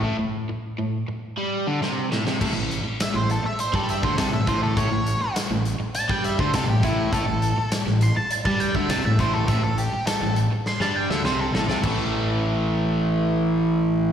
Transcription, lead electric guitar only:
3.02 3.15 E5 loud
3.15 3.29 C5 medium
3.31 3.44 A4 medium
3.45 3.59 E5 medium
3.60 3.75 C5 medium
3.75 3.89 A4 medium
3.90 4.03 E5 medium
4.04 4.18 C5 medium
4.18 4.32 A4 medium
4.33 4.47 E5 loud
4.48 4.62 C5 medium
4.63 4.77 A4 medium
4.77 5.34 C#5 loud
5.95 6.09 A5 loud
6.10 6.24 G5 medium
6.25 6.39 E5 medium
6.40 6.53 C5 medium
6.55 6.68 A4 medium
6.69 6.83 G4 medium
6.84 7.12 E4 medium
7.12 7.69 A4 loud
8.03 8.16 C6 loud
8.16 8.30 A5 medium
8.45 8.59 A5 medium
8.60 8.75 G5 medium
8.75 8.89 E5 medium
8.90 9.04 A5 loud
9.05 9.19 E5 medium
9.20 9.34 C5 medium
9.34 9.48 A4 medium
9.48 9.62 E5 medium
9.63 9.78 A4 medium
9.78 10.06 G4 medium
10.07 10.35 A4 medium
10.67 10.81 C6 loud
10.81 10.95 A5 medium
10.96 11.10 G5 medium
11.10 11.24 E5 medium
11.25 11.39 C5 loud
11.40 11.53 A4 medium
11.55 11.83 A4 loud

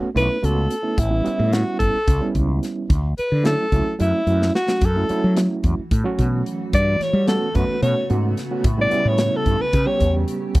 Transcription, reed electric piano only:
0.15 0.36 A3 medium
0.15 0.36 B3 medium
0.15 0.36 C#4 medium
0.15 0.36 E4 medium
0.42 0.74 A3 medium
0.42 0.74 B3 medium
0.42 0.74 C#4 medium
0.42 0.74 F#4 medium
0.82 0.97 A3 medium
0.82 0.97 B3 medium
0.82 0.97 C#4 medium
0.82 0.98 E4 medium
1.10 1.22 G3 medium
1.10 1.22 B3 medium
1.10 1.22 C#4 medium
1.10 1.22 E4 medium
1.24 1.96 G3 medium
1.24 1.96 B3 medium
1.24 1.97 C#4 medium
1.24 1.97 E4 medium
2.20 2.89 G3 medium
2.20 2.90 B3 medium
2.20 2.90 C#4 medium
2.20 2.90 E4 medium
3.43 3.64 F#3 medium
3.43 3.65 A3 medium
3.43 3.65 C#4 medium
3.43 3.65 E4 medium
3.72 3.93 F#3 medium
3.72 3.93 A3 medium
3.72 3.93 C#4 medium
3.72 3.93 E4 medium
3.99 4.20 F#3 medium
3.99 4.20 A3 medium
3.99 4.20 C#4 medium
3.99 4.20 E4 medium
4.27 4.57 F#3 medium
4.27 4.57 A3 medium
4.27 4.58 C#4 medium
4.27 4.58 E4 medium
4.68 4.82 F#3 medium
4.68 4.82 A3 medium
4.68 4.83 C#4 medium
4.68 4.83 F#4 medium
4.96 5.06 F#3 medium
4.96 5.06 A3 medium
4.96 5.06 C#4 medium
4.96 5.06 E4 medium
5.09 5.80 F#3 medium
5.09 5.80 A3 medium
5.09 5.81 C#4 medium
5.09 5.81 E4 medium
6.04 6.73 F#3 medium
6.04 6.73 A3 medium
6.04 6.73 C#4 medium
6.04 6.73 F#4 loud
7.27 7.48 A3 medium
7.27 7.48 B3 medium
7.27 7.48 C#4 medium
7.27 7.48 F#4 medium
7.54 7.75 A3 medium
7.54 7.75 B3 medium
7.54 7.75 C#4 medium
7.54 7.75 F#4 medium
7.82 8.02 A3 medium
7.82 8.03 B3 medium
7.82 8.03 C#4 medium
7.82 8.03 F#4 medium
8.10 8.40 A3 medium
8.10 8.40 B3 medium
8.10 8.40 C#4 medium
8.10 8.40 F#4 medium
8.51 8.64 A3 medium
8.51 8.65 B3 medium
8.51 8.65 C#4 medium
8.51 8.65 F#4 medium
8.78 8.88 G3 medium
8.78 8.88 B3 medium
8.78 8.88 C#4 medium
8.78 8.88 E4 medium
8.91 9.62 G3 medium
8.91 9.62 B3 medium
8.91 9.62 C#4 medium
8.91 9.62 E4 medium
9.86 10.55 G3 medium
9.86 10.55 B3 medium
9.86 10.55 C#4 medium
9.86 10.55 G4 medium

